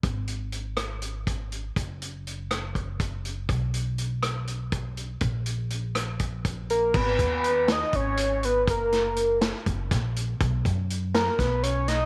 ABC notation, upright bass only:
X:1
M:7/8
L:1/8
Q:1/4=122
K:G#m
V:1 name="Upright bass" clef=bass
G,,,6- G,,, | F,,,6- F,,, | B,,,6- B,,, | A,,,6- A,,, |
G,,, D,,3 G,,,3 | F,,,4 F,,, A,,,2 | B,,, F,,3 B,,,3 |]